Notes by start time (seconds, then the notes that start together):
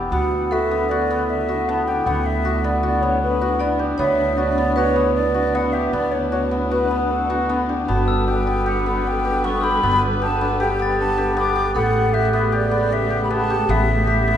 Already playing: E3 B3 D4 G4
0.10 D2 D3 B3 D4 E4 F#4 F#5
0.51 F#4 A4 E5
0.71 B3
0.89 F#4 D5
1.11 B3
1.29 E5
1.49 F#4
1.68 B3 A5
1.86 G4 G5
2.06 D2 B3 F#5
2.26 E5
2.45 F#4
2.64 B3 D5
2.83 F#4 D5
3.01 B3 C#5
3.22 B4
3.42 F#4
3.60 B3 D5
3.79 G4
3.98 D2 B3 C#5 E5
4.37 F#4 D5
4.58 B3
4.76 F#4 B4 C#5
4.96 B3
5.14 D5
5.34 F#4
5.54 B3 F#5
5.72 G4 E5
5.92 D2 B3 D5
6.11 C#5
6.30 F#4 C#5
6.51 B3
6.71 F#4 B4
6.91 B3
7.11 A4
7.30 F#4
7.49 B3
7.69 G4
7.87 G1 G3 B3 F#4 A4 B4 A5
8.08 E6
8.26 G4 G5
8.47 B3
8.66 G4 F#5
8.86 B3
9.07 G5
9.25 G4
9.44 B3 C#6
9.61 G4 B5 E6
9.83 G1 B3
10.22 G4 A5
10.41 B3
10.60 G4 G5
10.79 B3 A6
10.99 A5
11.18 G4
11.37 B3 D6
11.56 G4
11.75 A1 C#3 A3 B3 G4 A4 F#5
12.13 G4 E5 F#6
12.32 B3 E5
12.52 G4 D5
12.71 B3
12.92 E5
13.10 G4
13.23 B5
13.30 B3 A5
13.50 G4
13.69 A1 B3 E5
14.07 G4 B6
14.28 B3